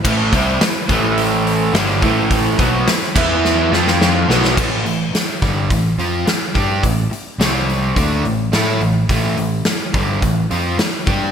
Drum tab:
CC |x---------------|------x---------|x---------------|----------------|
HH |--o-o-o-o-o-o-o-|o-o-o-----------|--o-o-o-o-o-o-o-|o-o-o-o-o-o-o-o-|
SD |----o-------oo--|----oo--o-ooo-oo|----o-o-----o---|----o-------o---|
BD |o-o---o-------o-|o-o---o---------|o-----o-o-----o-|o-------o-------|

CC |----------------|
HH |o-o-o-o-o-o-o-o-|
SD |----o-------o---|
BD |o-----o-o-----o-|